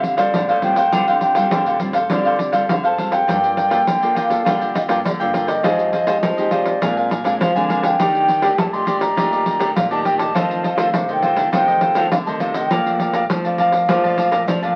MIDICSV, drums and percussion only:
0, 0, Header, 1, 2, 480
1, 0, Start_track
1, 0, Key_signature, -1, "minor"
1, 0, Tempo, 588813
1, 758, Time_signature, 4, 2, 24, 8
1, 2678, Key_signature, -2, "minor"
1, 12028, End_track
2, 0, Start_track
2, 0, Title_t, "Pandeiro"
2, 28, Note_on_c, 9, 54, 53
2, 109, Note_off_c, 9, 54, 0
2, 145, Note_on_c, 9, 54, 65
2, 226, Note_off_c, 9, 54, 0
2, 275, Note_on_c, 9, 54, 82
2, 357, Note_off_c, 9, 54, 0
2, 398, Note_on_c, 9, 54, 29
2, 479, Note_off_c, 9, 54, 0
2, 506, Note_on_c, 9, 54, 51
2, 588, Note_off_c, 9, 54, 0
2, 621, Note_on_c, 9, 54, 65
2, 703, Note_off_c, 9, 54, 0
2, 753, Note_on_c, 9, 54, 81
2, 834, Note_off_c, 9, 54, 0
2, 879, Note_on_c, 9, 54, 34
2, 960, Note_off_c, 9, 54, 0
2, 987, Note_on_c, 9, 54, 54
2, 1068, Note_off_c, 9, 54, 0
2, 1100, Note_on_c, 9, 54, 70
2, 1181, Note_off_c, 9, 54, 0
2, 1232, Note_on_c, 9, 54, 84
2, 1314, Note_off_c, 9, 54, 0
2, 1355, Note_on_c, 9, 54, 35
2, 1436, Note_off_c, 9, 54, 0
2, 1464, Note_on_c, 9, 54, 52
2, 1546, Note_off_c, 9, 54, 0
2, 1576, Note_on_c, 9, 54, 62
2, 1657, Note_off_c, 9, 54, 0
2, 1709, Note_on_c, 9, 54, 85
2, 1790, Note_off_c, 9, 54, 0
2, 1834, Note_on_c, 9, 54, 31
2, 1916, Note_off_c, 9, 54, 0
2, 1948, Note_on_c, 9, 54, 58
2, 2030, Note_off_c, 9, 54, 0
2, 2060, Note_on_c, 9, 54, 59
2, 2142, Note_off_c, 9, 54, 0
2, 2195, Note_on_c, 9, 54, 86
2, 2276, Note_off_c, 9, 54, 0
2, 2323, Note_on_c, 9, 54, 27
2, 2404, Note_off_c, 9, 54, 0
2, 2431, Note_on_c, 9, 54, 55
2, 2513, Note_off_c, 9, 54, 0
2, 2543, Note_on_c, 9, 54, 66
2, 2625, Note_off_c, 9, 54, 0
2, 2680, Note_on_c, 9, 54, 77
2, 2762, Note_off_c, 9, 54, 0
2, 2802, Note_on_c, 9, 54, 34
2, 2884, Note_off_c, 9, 54, 0
2, 2911, Note_on_c, 9, 54, 54
2, 2992, Note_off_c, 9, 54, 0
2, 3025, Note_on_c, 9, 54, 62
2, 3107, Note_off_c, 9, 54, 0
2, 3157, Note_on_c, 9, 54, 78
2, 3239, Note_off_c, 9, 54, 0
2, 3282, Note_on_c, 9, 54, 34
2, 3364, Note_off_c, 9, 54, 0
2, 3394, Note_on_c, 9, 54, 53
2, 3476, Note_off_c, 9, 54, 0
2, 3507, Note_on_c, 9, 54, 55
2, 3589, Note_off_c, 9, 54, 0
2, 3638, Note_on_c, 9, 54, 75
2, 3719, Note_off_c, 9, 54, 0
2, 3762, Note_on_c, 9, 54, 32
2, 3844, Note_off_c, 9, 54, 0
2, 3875, Note_on_c, 9, 54, 67
2, 3956, Note_off_c, 9, 54, 0
2, 3987, Note_on_c, 9, 54, 65
2, 4069, Note_off_c, 9, 54, 0
2, 4120, Note_on_c, 9, 54, 81
2, 4202, Note_off_c, 9, 54, 0
2, 4245, Note_on_c, 9, 54, 28
2, 4326, Note_off_c, 9, 54, 0
2, 4353, Note_on_c, 9, 54, 58
2, 4434, Note_off_c, 9, 54, 0
2, 4469, Note_on_c, 9, 54, 59
2, 4551, Note_off_c, 9, 54, 0
2, 4598, Note_on_c, 9, 54, 84
2, 4680, Note_off_c, 9, 54, 0
2, 4720, Note_on_c, 9, 54, 34
2, 4802, Note_off_c, 9, 54, 0
2, 4833, Note_on_c, 9, 54, 51
2, 4915, Note_off_c, 9, 54, 0
2, 4948, Note_on_c, 9, 54, 70
2, 5029, Note_off_c, 9, 54, 0
2, 5077, Note_on_c, 9, 54, 89
2, 5158, Note_off_c, 9, 54, 0
2, 5201, Note_on_c, 9, 54, 30
2, 5283, Note_off_c, 9, 54, 0
2, 5308, Note_on_c, 9, 54, 55
2, 5389, Note_off_c, 9, 54, 0
2, 5426, Note_on_c, 9, 54, 58
2, 5507, Note_off_c, 9, 54, 0
2, 5559, Note_on_c, 9, 54, 82
2, 5640, Note_off_c, 9, 54, 0
2, 5683, Note_on_c, 9, 54, 29
2, 5765, Note_off_c, 9, 54, 0
2, 5797, Note_on_c, 9, 54, 63
2, 5878, Note_off_c, 9, 54, 0
2, 5910, Note_on_c, 9, 54, 55
2, 5992, Note_off_c, 9, 54, 0
2, 6039, Note_on_c, 9, 54, 88
2, 6121, Note_off_c, 9, 54, 0
2, 6165, Note_on_c, 9, 54, 33
2, 6246, Note_off_c, 9, 54, 0
2, 6275, Note_on_c, 9, 54, 57
2, 6357, Note_off_c, 9, 54, 0
2, 6386, Note_on_c, 9, 54, 64
2, 6468, Note_off_c, 9, 54, 0
2, 6519, Note_on_c, 9, 54, 80
2, 6600, Note_off_c, 9, 54, 0
2, 6644, Note_on_c, 9, 54, 34
2, 6725, Note_off_c, 9, 54, 0
2, 6752, Note_on_c, 9, 54, 52
2, 6834, Note_off_c, 9, 54, 0
2, 6866, Note_on_c, 9, 54, 64
2, 6948, Note_off_c, 9, 54, 0
2, 6997, Note_on_c, 9, 54, 87
2, 7078, Note_off_c, 9, 54, 0
2, 7122, Note_on_c, 9, 54, 34
2, 7204, Note_off_c, 9, 54, 0
2, 7230, Note_on_c, 9, 54, 61
2, 7311, Note_off_c, 9, 54, 0
2, 7346, Note_on_c, 9, 54, 69
2, 7427, Note_off_c, 9, 54, 0
2, 7477, Note_on_c, 9, 54, 78
2, 7559, Note_off_c, 9, 54, 0
2, 7602, Note_on_c, 9, 54, 32
2, 7683, Note_off_c, 9, 54, 0
2, 7711, Note_on_c, 9, 54, 58
2, 7793, Note_off_c, 9, 54, 0
2, 7830, Note_on_c, 9, 54, 64
2, 7911, Note_off_c, 9, 54, 0
2, 7960, Note_on_c, 9, 54, 85
2, 8041, Note_off_c, 9, 54, 0
2, 8083, Note_on_c, 9, 54, 30
2, 8165, Note_off_c, 9, 54, 0
2, 8194, Note_on_c, 9, 54, 54
2, 8276, Note_off_c, 9, 54, 0
2, 8310, Note_on_c, 9, 54, 68
2, 8392, Note_off_c, 9, 54, 0
2, 8441, Note_on_c, 9, 54, 78
2, 8523, Note_off_c, 9, 54, 0
2, 8567, Note_on_c, 9, 54, 37
2, 8648, Note_off_c, 9, 54, 0
2, 8676, Note_on_c, 9, 54, 56
2, 8757, Note_off_c, 9, 54, 0
2, 8785, Note_on_c, 9, 54, 74
2, 8867, Note_off_c, 9, 54, 0
2, 8915, Note_on_c, 9, 54, 81
2, 8996, Note_off_c, 9, 54, 0
2, 9040, Note_on_c, 9, 54, 33
2, 9121, Note_off_c, 9, 54, 0
2, 9150, Note_on_c, 9, 54, 53
2, 9232, Note_off_c, 9, 54, 0
2, 9265, Note_on_c, 9, 54, 60
2, 9347, Note_off_c, 9, 54, 0
2, 9397, Note_on_c, 9, 54, 77
2, 9478, Note_off_c, 9, 54, 0
2, 9522, Note_on_c, 9, 54, 32
2, 9603, Note_off_c, 9, 54, 0
2, 9628, Note_on_c, 9, 54, 62
2, 9710, Note_off_c, 9, 54, 0
2, 9744, Note_on_c, 9, 54, 62
2, 9825, Note_off_c, 9, 54, 0
2, 9877, Note_on_c, 9, 54, 82
2, 9958, Note_off_c, 9, 54, 0
2, 10002, Note_on_c, 9, 54, 32
2, 10084, Note_off_c, 9, 54, 0
2, 10109, Note_on_c, 9, 54, 50
2, 10191, Note_off_c, 9, 54, 0
2, 10226, Note_on_c, 9, 54, 63
2, 10307, Note_off_c, 9, 54, 0
2, 10359, Note_on_c, 9, 54, 77
2, 10441, Note_off_c, 9, 54, 0
2, 10488, Note_on_c, 9, 54, 37
2, 10569, Note_off_c, 9, 54, 0
2, 10593, Note_on_c, 9, 54, 54
2, 10675, Note_off_c, 9, 54, 0
2, 10707, Note_on_c, 9, 54, 61
2, 10789, Note_off_c, 9, 54, 0
2, 10840, Note_on_c, 9, 54, 90
2, 10922, Note_off_c, 9, 54, 0
2, 10965, Note_on_c, 9, 54, 37
2, 11046, Note_off_c, 9, 54, 0
2, 11072, Note_on_c, 9, 54, 53
2, 11154, Note_off_c, 9, 54, 0
2, 11187, Note_on_c, 9, 54, 58
2, 11269, Note_off_c, 9, 54, 0
2, 11320, Note_on_c, 9, 54, 89
2, 11402, Note_off_c, 9, 54, 0
2, 11448, Note_on_c, 9, 54, 34
2, 11530, Note_off_c, 9, 54, 0
2, 11557, Note_on_c, 9, 54, 62
2, 11638, Note_off_c, 9, 54, 0
2, 11675, Note_on_c, 9, 54, 65
2, 11757, Note_off_c, 9, 54, 0
2, 11805, Note_on_c, 9, 54, 83
2, 11886, Note_off_c, 9, 54, 0
2, 11930, Note_on_c, 9, 54, 31
2, 12011, Note_off_c, 9, 54, 0
2, 12028, End_track
0, 0, End_of_file